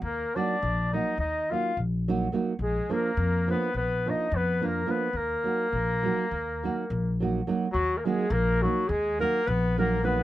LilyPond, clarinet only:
\new Staff \with { instrumentName = "Clarinet" } { \time 9/8 \key ees \minor \tempo 4. = 70 bes'8 d''4 ees''8 ees''8 f''8 r4. | aes'8 bes'4 ces''8 ces''8 ees''8 ces''8 bes'8 ces''8 | bes'2.~ bes'8 r4 | ges'16. bes'32 aes'8 bes'8 ges'8 aes'8 bes'8 ces''8 bes'8 ces''8 | }